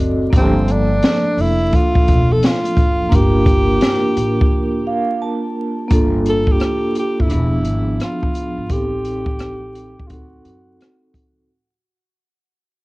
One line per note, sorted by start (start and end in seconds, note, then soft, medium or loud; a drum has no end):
0.00 0.30 F#1 medium
0.00 0.28 C4 medium
0.00 0.30 F#4 medium
0.00 0.31 A4 medium
0.00 0.29 D#5 medium
0.30 0.99 G1 loud
0.30 3.08 F3 medium
0.30 3.07 A#3 medium
0.30 3.08 D4 medium
0.30 kick loud
0.30 closed hi-hat loud
0.36 0.73 C4 medium
0.36 0.43 G4 medium
0.42 3.13 A4 medium
0.68 1.42 D4 loud
0.68 closed hi-hat medium
1.02 snare loud
1.02 closed hi-hat medium
1.37 1.69 F1 medium
1.37 1.77 E4 loud
1.37 open hi-hat soft
1.73 2.34 F4 loud
1.73 kick medium
1.73 closed hi-hat medium
1.95 muted upright bass stroke soft
1.95 kick loud
2.08 2.40 E1 medium
2.08 kick medium
2.08 closed hi-hat medium
2.33 2.48 A4 loud
2.43 3.17 F4 loud
2.43 snare medium
2.43 closed hi-hat medium
2.65 closed hi-hat medium
2.77 3.09 F#1 medium
2.77 kick loud
2.77 closed hi-hat medium
3.09 3.78 G1 loud
3.09 5.86 A#3 medium
3.09 5.87 D4 medium
3.09 5.87 F4 medium
3.09 kick loud
3.09 closed hi-hat medium
3.15 5.23 G4 loud
3.15 5.88 A#4 medium
3.46 kick loud
3.46 closed hi-hat medium
3.81 snare loud
3.81 closed hi-hat medium
4.17 4.48 A1 medium
4.17 closed hi-hat medium
4.41 kick loud
4.87 5.19 F5 medium
5.22 5.87 A5 medium
5.88 6.57 G1 loud
5.88 7.26 A#3 medium
5.88 7.27 D4 medium
5.88 7.28 F4 medium
5.88 kick loud
5.88 closed hi-hat medium
5.93 7.29 A4 medium
6.26 closed hi-hat medium
6.30 6.54 A4 loud
6.47 kick medium
6.53 6.98 G4 medium
6.60 cross-stick medium
6.60 closed hi-hat medium
6.95 closed hi-hat medium
7.00 7.23 G4 medium
7.20 7.30 G1 medium
7.20 8.02 E4 medium
7.20 kick medium
7.27 7.65 E1 loud
7.27 8.68 F3 medium
7.27 8.66 B3 medium
7.27 8.67 D4 medium
7.27 closed hi-hat medium
7.33 8.68 G#4 medium
7.65 7.97 G#1 medium
7.65 closed hi-hat medium
8.00 8.74 F4 medium
8.00 cross-stick medium
8.00 closed hi-hat medium
8.23 kick medium
8.35 closed hi-hat medium
8.58 8.69 G#1 medium
8.68 9.93 A1 medium
8.68 8.77 B3 soft
8.68 10.06 D#4 medium
8.68 10.07 G4 medium
8.68 kick loud
8.68 closed hi-hat medium
8.72 10.06 C4 medium
8.72 10.08 G4 loud
8.72 10.08 A4 medium
9.05 closed hi-hat medium
9.26 kick medium
9.39 cross-stick medium
9.39 closed hi-hat medium
9.75 closed hi-hat medium
9.99 kick medium
10.07 10.42 D2 loud
10.07 11.45 C4 medium
10.07 11.46 D#4 medium
10.07 10.12 F4 soft
10.07 11.47 F#4 soft
10.07 11.15 F#4 medium
10.07 kick medium
10.07 closed hi-hat medium
10.13 11.48 A4 medium
10.45 10.76 F#2 medium
10.45 closed hi-hat medium
10.81 cross-stick medium
10.81 closed hi-hat medium
11.14 11.46 C#2 medium
11.14 kick medium
11.14 closed hi-hat medium